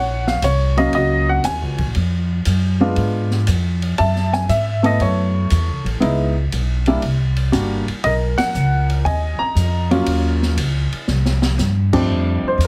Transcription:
0.00 0.41 A#1 medium
0.00 0.43 C#5 medium
0.00 0.29 F#5 medium
0.27 0.44 F5 medium
0.27 snare medium
0.42 0.92 C2 medium
0.42 0.80 C#5 medium
0.42 hi-hat pedal medium
0.42 ride medium
0.77 1.41 F#3 medium
0.77 1.41 A#3 medium
0.77 1.41 C#4 medium
0.77 0.93 D#5 medium
0.77 1.41 F5 medium
0.77 ride soft
0.93 1.42 C#2 medium
0.93 1.27 D#5 loud
0.93 ride medium
0.97 1.93 F#4 medium
1.29 1.44 F#5 medium
1.44 1.62 D#2 medium
1.44 1.84 G#5 medium
1.44 snare soft
1.44 hi-hat pedal medium
1.44 ride medium
1.62 1.78 C#2 medium
1.78 1.94 A#1 medium
1.78 kick medium
1.78 ride soft
1.95 2.44 F2 medium
1.95 ride medium
2.45 2.95 F#2 medium
2.45 hi-hat pedal medium
2.45 ride medium
2.80 3.44 G#3 medium
2.80 3.44 B3 medium
2.80 3.44 D4 medium
2.80 3.44 F4 medium
2.96 3.46 G#2 medium
2.96 ride medium
3.31 snare soft
3.47 3.97 F2 medium
3.47 hi-hat pedal medium
3.47 ride medium
3.82 ride soft
3.98 4.48 F#2 medium
3.98 4.48 E5 medium
3.98 4.34 A5 loud
3.98 ride medium
4.16 snare soft
4.33 4.48 G#5 medium
4.33 snare soft
4.49 4.98 G#2 medium
4.49 4.85 E5 medium
4.49 hi-hat pedal medium
4.49 ride medium
4.83 5.47 A3 medium
4.83 5.47 B3 medium
4.83 5.47 E4 medium
4.83 5.01 A4 medium
4.83 5.01 D#5 medium
4.83 ride soft
5.00 5.49 F#2 medium
5.00 5.98 A4 medium
5.00 5.82 C#5 medium
5.00 ride medium
5.50 5.69 E2 medium
5.50 hi-hat pedal medium
5.50 ride medium
5.67 5.84 C#2 medium
5.84 6.00 A1 medium
5.84 ride soft
6.00 6.50 C#2 medium
6.00 6.32 G#3 medium
6.00 6.32 B3 medium
6.00 6.33 D#4 medium
6.00 6.33 E4 medium
6.00 ride medium
6.52 7.01 B1 medium
6.52 hi-hat pedal soft
6.52 ride medium
6.86 7.01 G3 medium
6.86 7.01 A#3 medium
6.86 7.01 D4 medium
6.86 7.01 E4 medium
6.86 ride soft
7.02 7.52 C2 medium
7.02 ride medium
7.36 ride soft
7.52 7.85 G1 medium
7.52 7.84 G3 medium
7.52 7.84 A#3 medium
7.52 7.84 D4 medium
7.52 7.84 F#4 medium
7.52 hi-hat pedal medium
7.52 ride medium
7.88 muted upright bass stroke soft
7.88 ride soft
8.04 8.36 B1 medium
8.04 9.03 A#4 medium
8.04 8.12 D#5 medium
8.04 ride medium
8.38 8.85 F#5 loud
8.38 snare medium
8.38 ride medium
8.54 9.04 C#2 medium
8.54 hi-hat pedal medium
8.90 ride soft
9.05 9.37 D#2 medium
9.05 10.03 D#5 medium
9.05 9.41 G#5 loud
9.05 ride medium
9.39 9.87 A#5 loud
9.39 muted upright bass stroke soft
9.55 10.05 F2 medium
9.55 hi-hat pedal medium
9.55 ride medium
9.91 10.54 F#3 medium
9.91 10.54 A#3 medium
9.91 10.54 C#4 medium
9.91 10.54 F4 medium
9.91 ride soft
10.06 10.56 D#2 medium
10.06 ride medium
10.42 snare soft
10.57 10.90 C#2 medium
10.57 hi-hat pedal soft
10.57 ride medium
10.92 ride soft
11.07 11.57 C2 medium
11.07 snare soft
11.25 snare medium
11.42 snare medium
11.58 12.08 G2 medium
11.58 snare medium
11.58 hi-hat pedal medium
11.93 12.57 F2 medium
11.93 12.57 G3 medium
11.93 12.57 A3 medium
11.93 12.57 C4 medium
11.93 12.57 D4 medium
11.93 kick medium
11.93 crash medium
12.09 12.42 F2 medium
12.43 muted upright bass stroke soft
12.48 12.62 C5 medium
12.58 12.67 E2 medium
12.58 hi-hat pedal medium
12.58 ride medium

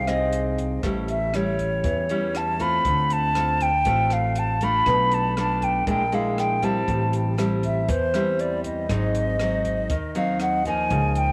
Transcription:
0.00 0.80 C2 medium
0.00 0.81 C3 medium
0.07 0.80 C4 medium
0.07 0.80 D#4 medium
0.07 0.80 G#4 medium
0.07 0.58 D#5 medium
0.07 cross-stick medium
0.07 closed hi-hat soft
0.33 closed hi-hat soft
0.58 kick soft
0.58 closed hi-hat soft
0.83 1.80 A1 medium
0.83 1.82 A2 soft
0.83 1.30 G3 medium
0.83 1.30 C#4 soft
0.83 1.30 E4 medium
0.83 kick medium
0.83 cross-stick medium
0.83 closed hi-hat soft
1.08 1.37 E5 medium
1.08 closed hi-hat soft
1.34 2.06 G3 medium
1.34 2.06 C#4 soft
1.34 2.06 E4 medium
1.34 2.38 C#5 medium
1.34 cross-stick medium
1.34 closed hi-hat soft
1.59 kick soft
1.59 closed hi-hat soft
1.84 2.81 E2 medium
1.84 2.83 E3 medium
1.84 kick medium
1.84 closed hi-hat medium
2.09 2.56 G3 medium
2.09 2.56 C#4 medium
2.09 2.56 E4 medium
2.09 closed hi-hat soft
2.35 2.63 A5 medium
2.35 cross-stick medium
2.35 closed hi-hat soft
2.59 3.31 A3 medium
2.59 3.31 C4 medium
2.59 3.32 F4 medium
2.59 3.14 B5 medium
2.59 kick soft
2.59 closed hi-hat soft
2.85 3.82 D2 medium
2.85 3.84 D3 medium
2.85 kick medium
2.85 closed hi-hat medium
3.10 3.64 A5 loud
3.10 closed hi-hat soft
3.35 3.68 A3 medium
3.35 3.68 C4 medium
3.35 3.69 F4 medium
3.35 cross-stick medium
3.35 closed hi-hat soft
3.60 4.15 G5 loud
3.60 kick soft
3.60 closed hi-hat soft
3.85 4.82 A1 medium
3.85 4.84 A2 soft
3.85 4.57 A3 medium
3.85 4.57 C4 medium
3.85 4.58 F4 medium
3.85 kick medium
3.85 closed hi-hat medium
4.10 4.40 F5 medium
4.10 cross-stick soft
4.10 closed hi-hat soft
4.35 4.65 A5 medium
4.35 closed hi-hat soft
4.61 5.33 A3 medium
4.61 5.33 D4 medium
4.61 5.34 F4 medium
4.61 5.16 B5 loud
4.61 kick soft
4.61 closed hi-hat soft
4.86 5.83 B1 medium
4.86 5.85 B2 medium
4.86 kick medium
4.86 cross-stick medium
4.86 closed hi-hat soft
5.11 5.38 A5 medium
5.11 closed hi-hat soft
5.37 5.85 A3 soft
5.37 5.86 D4 medium
5.37 5.86 F4 medium
5.37 5.65 A5 medium
5.37 cross-stick medium
5.37 closed hi-hat soft
5.62 5.88 G5 medium
5.62 kick soft
5.62 closed hi-hat soft
5.87 6.84 A#1 medium
5.87 6.85 A#2 medium
5.87 6.02 G#3 medium
5.87 6.02 D4 medium
5.87 6.03 E4 medium
5.87 6.16 G5 loud
5.87 kick medium
5.87 closed hi-hat medium
6.12 6.59 G#3 medium
6.12 6.59 D4 medium
6.12 6.59 E4 medium
6.12 6.41 F5 medium
6.12 closed hi-hat soft
6.38 6.66 G5 medium
6.38 cross-stick medium
6.38 closed hi-hat soft
6.62 7.34 G3 medium
6.62 7.34 C4 medium
6.62 7.35 E4 medium
6.62 7.14 A5 medium
6.62 kick soft
6.62 closed hi-hat soft
6.88 7.85 A1 medium
6.88 7.86 A2 medium
6.88 kick medium
6.88 closed hi-hat medium
7.13 closed hi-hat soft
7.38 7.88 G3 medium
7.38 7.88 C4 medium
7.38 7.89 E4 medium
7.38 cross-stick medium
7.38 closed hi-hat soft
7.63 7.91 E5 medium
7.63 kick soft
7.63 closed hi-hat soft
7.88 8.85 E2 medium
7.88 8.87 E3 medium
7.88 8.42 C5 medium
7.88 kick medium
7.88 closed hi-hat medium
8.14 8.85 G3 medium
8.14 8.86 C4 medium
8.14 8.86 E4 medium
8.14 cross-stick medium
8.14 closed hi-hat soft
8.39 8.64 D5 medium
8.39 closed hi-hat soft
8.64 10.11 D#5 medium
8.64 kick soft
8.64 closed hi-hat soft
8.89 9.86 G#1 medium
8.89 9.87 G#2 medium
8.89 9.36 F#3 soft
8.89 9.36 C4 medium
8.89 9.36 D#4 medium
8.89 kick soft
8.89 cross-stick medium
8.89 closed hi-hat medium
9.15 closed hi-hat soft
9.39 9.90 F#3 soft
9.39 9.90 C4 soft
9.39 9.90 D#4 medium
9.39 cross-stick medium
9.39 closed hi-hat soft
9.65 kick soft
9.65 closed hi-hat soft
9.90 10.86 D#2 medium
9.90 10.88 D#3 medium
9.90 kick medium
9.90 closed hi-hat medium
10.15 10.61 F#3 medium
10.15 10.62 C4 medium
10.15 10.62 D#4 medium
10.15 10.39 F5 medium
10.15 closed hi-hat soft
10.40 10.64 F#5 medium
10.40 cross-stick medium
10.40 closed hi-hat soft
10.65 11.32 F3 soft
10.65 11.32 A#3 medium
10.65 11.32 D#4 medium
10.65 11.19 G#5 medium
10.65 kick soft
10.65 closed hi-hat soft
10.90 11.32 C#2 medium
10.90 11.32 C#3 medium
10.90 kick soft
10.90 closed hi-hat soft
11.15 11.32 G5 medium
11.15 closed hi-hat soft

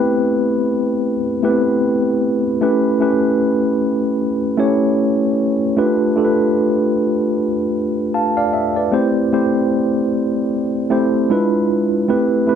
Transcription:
0.00 1.43 A3 medium
0.00 1.43 B3 medium
0.00 1.50 C4 medium
0.00 1.44 E4 medium
0.00 1.44 G4 medium
0.00 1.45 B4 medium
1.43 2.41 A3 medium
1.43 1.50 B3 medium
1.43 2.41 E4 medium
1.43 2.42 G4 medium
1.43 2.42 B4 loud
1.50 2.44 C4 medium
2.61 2.94 A3 medium
2.61 2.94 C#4 medium
2.61 2.95 E4 medium
2.61 2.95 G4 medium
2.61 2.95 B4 medium
3.00 4.29 A3 medium
3.00 4.30 C#4 medium
3.00 4.30 E4 medium
3.00 4.30 G4 medium
3.00 4.30 B4 medium
4.58 5.56 A3 loud
4.58 5.56 C#4 medium
4.58 5.57 E4 medium
4.58 5.57 G4 medium
4.58 5.57 C#5 loud
5.77 6.10 A3 medium
5.77 6.10 D4 medium
5.77 6.10 F4 medium
5.77 6.10 G4 medium
5.77 6.11 B4 loud
6.16 7.45 A3 medium
6.16 7.46 D4 medium
6.16 7.46 F4 medium
6.16 7.46 G4 medium
6.16 6.25 A4 medium
6.25 7.49 B4 medium
8.14 8.36 F5 medium
8.14 8.35 A5 medium
8.37 8.53 D5 medium
8.37 8.53 F5 medium
8.53 8.75 E5 medium
8.76 9.14 B4 medium
8.76 9.13 D5 medium
8.92 9.25 A3 medium
8.92 9.25 C4 medium
8.92 9.26 E4 medium
8.92 9.26 G4 medium
8.92 9.26 C5 loud
9.32 10.61 A3 medium
9.32 10.61 C4 medium
9.32 10.62 E4 medium
9.32 10.62 G4 medium
9.32 10.62 C5 medium
10.90 11.29 A3 medium
10.90 11.30 C4 medium
10.90 11.29 E4 medium
10.90 11.30 G4 medium
10.90 11.30 C5 medium
11.30 11.96 G#3 medium
11.30 11.96 D4 medium
11.30 11.96 E4 medium
11.30 11.96 F4 medium
11.30 11.97 B4 loud
12.08 12.41 A3 medium
12.08 12.41 C4 medium
12.08 12.42 E4 medium
12.08 12.42 G4 medium
12.08 12.42 B4 loud
12.47 12.55 A3 medium
12.47 12.55 C4 medium
12.47 12.55 E4 medium
12.47 12.55 G4 medium
12.47 12.55 B4 medium

